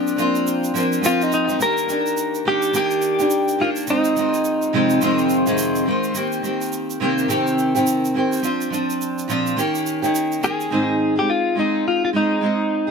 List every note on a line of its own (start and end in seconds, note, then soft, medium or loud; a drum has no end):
0.00 0.15 F3 soft
0.00 0.17 A#3 soft
0.00 0.18 C4 medium
0.00 1.28 D4 medium
0.00 0.17 F4 medium
0.07 shaker soft
0.17 0.72 F3 medium
0.17 0.74 A#3 medium
0.17 0.74 C4 medium
0.17 0.75 F4 medium
0.17 shaker soft
0.35 shaker soft
0.47 shaker medium
0.64 shaker soft
0.74 1.00 F3 medium
0.74 1.02 A#3 medium
0.74 1.03 C4 medium
0.74 1.04 F4 medium
0.74 shaker soft
0.92 shaker soft
1.02 1.48 F3 medium
1.02 1.48 A#3 medium
1.02 1.47 C4 medium
1.02 1.46 F4 medium
1.02 shaker medium
1.06 1.23 F4 medium
1.22 1.33 D#4 medium
1.22 shaker soft
1.32 1.59 D#4 medium
1.32 shaker soft
1.47 1.58 F3 soft
1.47 1.59 A#3 medium
1.47 1.60 C4 medium
1.47 1.59 F4 medium
1.47 shaker soft
1.59 1.86 D#3 medium
1.59 1.88 A#3 medium
1.59 1.89 D4 medium
1.59 1.89 G4 medium
1.59 2.47 A#4 medium
1.59 shaker medium
1.77 shaker soft
1.88 2.45 D#3 soft
1.88 2.45 A#3 medium
1.88 2.46 D4 medium
1.88 2.46 G4 soft
1.88 shaker medium
2.06 shaker soft
2.17 shaker medium
2.34 shaker soft
2.45 2.72 D#3 medium
2.45 2.73 A#3 medium
2.45 2.74 D4 medium
2.45 2.75 G4 medium
2.62 shaker soft
2.73 3.19 D#3 medium
2.73 3.19 A#3 medium
2.73 3.18 D4 medium
2.73 3.18 G4 medium
2.73 3.63 G4 medium
2.73 shaker medium
2.91 shaker soft
3.02 shaker soft
3.19 3.57 D#3 medium
3.19 3.59 A#3 medium
3.19 3.59 D4 medium
3.19 3.59 G4 medium
3.19 shaker soft
3.30 shaker medium
3.48 shaker soft
3.58 3.86 D#3 medium
3.58 3.88 A#3 medium
3.58 3.88 D4 medium
3.58 3.69 F4 medium
3.58 3.89 G4 medium
3.76 shaker soft
3.87 4.14 D#3 medium
3.87 4.16 G#3 medium
3.87 4.17 C4 medium
3.87 5.84 D#4 medium
3.87 4.17 F4 medium
3.87 shaker medium
4.04 shaker soft
4.16 4.74 D#3 medium
4.16 4.73 G#3 medium
4.16 4.74 C4 medium
4.16 4.74 F4 medium
4.16 shaker soft
4.34 shaker soft
4.44 shaker medium
4.62 shaker soft
4.73 4.99 F2 medium
4.73 5.00 C3 medium
4.73 5.01 D#3 medium
4.73 5.01 G#3 medium
4.73 5.01 C4 medium
4.73 5.02 F4 medium
4.90 shaker soft
5.01 5.47 F2 medium
5.01 5.47 C3 medium
5.01 5.46 D#3 medium
5.01 5.46 G#3 medium
5.01 5.45 C4 medium
5.01 5.45 F4 medium
5.01 shaker medium
5.18 shaker soft
5.29 shaker soft
5.46 5.87 F2 medium
5.46 5.87 C3 medium
5.46 5.84 D#3 medium
5.46 5.85 G#3 medium
5.46 5.86 C4 medium
5.46 5.86 F4 medium
5.46 shaker soft
5.58 shaker medium
5.75 shaker soft
5.86 6.13 D#3 medium
5.86 6.15 G#3 medium
5.86 6.15 C4 medium
5.86 6.16 F4 medium
6.03 shaker soft
6.14 6.41 D#3 medium
6.14 6.43 A#3 medium
6.14 6.43 C4 medium
6.14 6.44 G4 medium
6.14 shaker medium
6.32 shaker soft
6.42 6.99 D#3 medium
6.42 7.01 A#3 medium
6.42 7.01 C4 medium
6.42 7.01 G4 medium
6.42 shaker medium
6.61 shaker soft
6.72 shaker medium
6.90 shaker soft
7.00 7.27 C3 medium
7.00 7.28 D#3 medium
7.00 7.28 A#3 medium
7.00 7.29 C4 medium
7.00 7.29 G4 medium
7.18 shaker soft
7.28 7.74 C3 medium
7.28 7.75 D#3 medium
7.28 7.75 A#3 medium
7.28 7.74 C4 medium
7.28 7.73 G4 loud
7.28 shaker medium
7.47 shaker soft
7.58 shaker soft
7.75 8.16 C3 medium
7.75 8.13 D#3 medium
7.75 8.14 A#3 medium
7.75 8.15 C4 medium
7.75 8.15 G4 medium
7.75 shaker soft
7.87 shaker medium
8.05 shaker soft
8.14 8.42 D#3 medium
8.14 8.42 A#3 medium
8.14 8.42 C4 medium
8.14 8.44 G4 medium
8.32 shaker soft
8.42 8.69 F3 medium
8.42 8.70 C4 medium
8.42 8.72 D4 medium
8.42 8.73 F4 medium
8.42 shaker medium
8.61 shaker soft
8.70 9.28 F3 medium
8.70 9.28 C4 medium
8.70 9.29 D4 medium
8.70 9.29 F4 medium
8.70 shaker soft
8.90 shaker soft
9.01 shaker medium
9.18 shaker soft
9.28 9.57 A#2 medium
9.28 9.56 F3 medium
9.28 9.57 C4 medium
9.28 9.58 D4 medium
9.28 9.58 F4 loud
9.28 shaker soft
9.46 shaker soft
9.56 10.02 D#3 medium
9.56 10.03 A#3 medium
9.56 10.02 C#4 medium
9.56 10.01 G4 medium
9.56 shaker medium
9.75 shaker soft
9.86 shaker soft
10.02 10.40 D#3 medium
10.02 10.42 A#3 medium
10.02 10.42 C#4 medium
10.02 10.42 G4 medium
10.02 shaker soft
10.15 shaker medium
10.32 shaker soft
10.41 10.70 D#3 medium
10.41 10.71 A#3 medium
10.41 10.72 C#4 medium
10.41 10.72 G4 medium
10.41 11.14 G#4 medium
10.41 shaker soft
10.60 shaker soft
10.70 11.16 G#2 medium
10.70 11.17 D#3 medium
10.70 11.17 G#3 medium
10.70 11.17 C4 medium
10.70 11.16 D#4 medium
10.70 11.14 G#4 medium
11.16 11.54 G#3 soft
11.16 11.55 C4 soft
11.16 11.57 D#4 soft
11.16 11.30 G4 medium
11.16 11.56 G#4 soft
11.30 11.58 F4 medium
11.55 12.12 G#3 medium
11.55 12.13 C4 soft
11.55 12.15 D#4 medium
11.55 12.15 G#4 medium
11.59 11.87 D#4 medium
11.88 12.02 F4 medium
12.05 12.09 F4 medium
12.13 12.40 G#3 medium
12.13 12.41 C4 medium
12.13 12.42 D#4 medium
12.13 12.91 D#4 medium
12.13 12.43 G#4 medium
12.41 12.87 G#3 medium
12.41 12.88 C4 medium
12.41 12.87 D#4 medium
12.41 12.86 G#4 medium
12.87 12.91 G#4 soft